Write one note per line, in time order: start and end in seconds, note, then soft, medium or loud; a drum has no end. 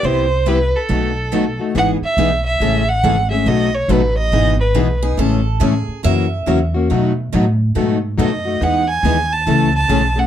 0.03 0.72 C2 medium
0.03 0.25 C3 medium
0.03 0.25 G3 medium
0.03 0.25 B3 medium
0.03 0.26 E4 medium
0.03 0.26 G4 medium
0.03 0.49 C5 medium
0.46 0.58 C3 medium
0.46 0.58 G3 medium
0.46 0.58 B3 medium
0.46 0.58 E4 medium
0.46 0.58 G4 medium
0.46 0.77 B4 medium
0.76 1.60 A4 medium
0.89 1.58 B1 medium
0.89 1.10 B2 medium
0.89 1.10 D#3 medium
0.89 1.11 F#3 medium
0.89 1.11 A3 medium
0.89 1.10 B3 medium
0.89 1.11 D#4 medium
0.89 1.11 F#4 medium
0.89 1.11 A4 medium
1.32 1.44 B2 medium
1.32 1.43 D#3 medium
1.32 1.44 F#3 medium
1.32 1.44 A3 medium
1.32 1.44 B3 medium
1.32 1.44 D#4 medium
1.32 1.44 F#4 medium
1.32 1.44 A4 medium
1.59 1.75 A3 soft
1.59 1.74 D#4 soft
1.59 1.74 F#4 medium
1.75 2.00 G#1 medium
1.75 1.96 E3 medium
1.75 1.96 G#3 medium
1.75 1.97 B3 medium
1.75 1.97 D#4 medium
1.75 1.97 G#4 medium
1.75 1.89 F#5 loud
2.01 2.43 E5 medium
2.01 muted upright bass stroke soft
2.17 2.59 B1 medium
2.17 2.29 E3 medium
2.17 2.29 G#3 medium
2.17 2.30 B3 medium
2.17 2.30 D#4 medium
2.17 2.30 G#4 medium
2.46 2.90 E5 medium
2.60 3.02 A1 medium
2.60 2.83 C#3 medium
2.60 2.83 E3 medium
2.60 2.83 G#3 medium
2.60 2.82 A3 medium
2.60 2.83 C#4 medium
2.60 2.83 E4 medium
2.60 2.83 G#4 medium
2.60 2.83 A4 medium
2.88 3.30 F#5 loud
3.04 3.45 G#1 medium
3.04 3.15 C#3 medium
3.04 3.15 E3 medium
3.04 3.15 G#3 medium
3.04 3.15 A3 medium
3.04 3.15 C#4 medium
3.04 3.15 E4 medium
3.04 3.15 G#4 loud
3.04 3.15 A4 medium
3.31 3.47 A3 soft
3.31 3.47 C#4 medium
3.31 3.46 G#4 medium
3.31 3.49 E5 medium
3.46 3.88 B1 medium
3.46 3.68 B2 medium
3.46 3.68 D#3 medium
3.46 3.69 F#3 medium
3.46 3.69 A3 medium
3.46 3.68 B3 medium
3.46 3.69 D#4 medium
3.46 3.69 F#4 medium
3.46 3.68 A4 medium
3.46 3.76 D#5 medium
3.74 3.93 C#5 medium
3.88 4.31 A1 medium
3.88 4.01 B2 medium
3.88 4.01 D#3 medium
3.88 4.01 F#3 medium
3.88 4.01 A3 medium
3.88 4.01 B3 medium
3.88 4.01 D#4 medium
3.88 4.01 F#4 medium
3.88 4.01 A4 medium
3.88 4.17 B4 medium
4.18 4.57 D#5 medium
4.32 4.74 G#1 medium
4.32 4.54 B2 medium
4.32 4.54 E3 medium
4.32 4.54 G#3 medium
4.32 4.54 B3 medium
4.32 4.54 D#4 medium
4.32 4.54 G#4 medium
4.60 5.00 B4 medium
4.75 5.17 B1 medium
4.75 4.87 B2 medium
4.75 4.87 E3 medium
4.75 4.86 G#3 medium
4.75 4.87 B3 medium
4.75 4.87 D#4 medium
4.75 4.88 G#4 medium
5.04 5.19 B3 soft
5.04 5.19 D#4 medium
5.04 5.18 G#4 medium
5.17 5.60 A1 medium
5.17 5.40 C#3 medium
5.17 5.40 E3 medium
5.17 5.39 G#3 medium
5.17 5.40 A3 medium
5.17 5.41 C#4 medium
5.17 5.40 E4 medium
5.17 5.41 G#4 medium
5.17 5.40 A4 medium
5.60 5.86 A2 medium
5.60 5.73 C#3 medium
5.60 5.73 E3 medium
5.60 5.72 G#3 medium
5.60 5.73 A3 loud
5.60 5.73 C#4 loud
5.60 5.72 E4 medium
5.60 5.73 G#4 medium
5.60 5.72 A4 medium
5.88 muted upright bass stroke soft
6.03 6.46 F#2 medium
6.03 6.25 C#3 medium
6.03 6.26 E3 medium
6.03 6.25 F#3 medium
6.03 6.26 A#3 medium
6.03 6.26 C#4 medium
6.03 6.25 E4 medium
6.03 6.26 F#4 medium
6.03 6.25 A#4 medium
6.03 6.86 E5 medium
6.46 6.89 E2 medium
6.46 6.58 C#3 medium
6.46 6.58 E3 medium
6.46 6.58 F#3 medium
6.46 6.59 A#3 medium
6.46 6.59 C#4 medium
6.46 6.58 E4 medium
6.46 6.59 F#4 medium
6.46 6.59 A#4 medium
6.74 6.90 A#3 soft
6.74 6.90 C#4 medium
6.74 6.89 F#4 medium
6.90 7.11 B2 medium
6.90 7.32 B2 medium
6.90 7.11 D#3 medium
6.90 7.12 F#3 medium
6.90 7.12 A3 medium
6.90 7.11 B3 medium
6.90 7.12 D#4 medium
6.90 7.12 F#4 medium
6.90 7.12 A4 medium
7.32 7.75 A2 medium
7.32 7.45 B2 medium
7.32 7.44 D#3 medium
7.32 7.45 F#3 medium
7.32 7.45 A3 medium
7.32 7.44 B3 medium
7.32 7.45 D#4 medium
7.32 7.46 F#4 medium
7.32 7.44 A4 medium
7.75 8.17 G#2 medium
7.75 7.97 B2 medium
7.75 7.97 D#3 medium
7.75 7.97 F#3 medium
7.75 7.97 A3 medium
7.75 7.97 B3 medium
7.75 7.97 D#4 medium
7.75 7.98 F#4 medium
7.75 7.97 A4 medium
8.18 8.60 F#2 medium
8.18 8.30 B2 medium
8.18 8.30 D#3 medium
8.18 8.29 F#3 medium
8.18 8.30 A3 medium
8.18 8.30 B3 medium
8.18 8.30 D#4 loud
8.18 8.30 F#4 loud
8.18 8.31 A4 medium
8.18 8.64 D#5 medium
8.45 8.61 A3 soft
8.45 8.60 D#4 soft
8.45 8.61 F#4 medium
8.60 9.02 E2 medium
8.60 8.82 E3 medium
8.60 8.83 G#3 medium
8.60 8.83 B3 medium
8.60 8.83 D#4 medium
8.60 8.83 G#4 medium
8.60 8.88 F#5 medium
8.89 9.34 G#5 loud
9.03 9.45 D#2 medium
9.03 9.16 E3 medium
9.03 9.16 G#3 medium
9.03 9.16 B3 medium
9.03 9.16 D#4 medium
9.03 9.16 G#4 medium
9.32 9.75 A5 medium
9.47 9.89 C#2 medium
9.47 9.69 C#3 medium
9.47 9.69 E3 medium
9.47 9.68 G#3 medium
9.47 9.69 A3 medium
9.47 9.69 C#4 medium
9.47 9.69 E4 medium
9.47 9.69 G#4 medium
9.47 9.69 A4 medium
9.76 10.20 A5 loud
9.89 10.27 B1 medium
9.89 10.01 C#3 medium
9.89 10.01 E3 medium
9.89 10.01 G#3 medium
9.89 10.01 A3 medium
9.89 10.01 C#4 loud
9.89 10.01 E4 medium
9.89 10.01 G#4 loud
9.89 10.01 A4 medium
10.16 10.27 A3 soft
10.16 10.27 C#4 medium
10.16 10.27 G#4 medium
10.16 10.27 F#5 medium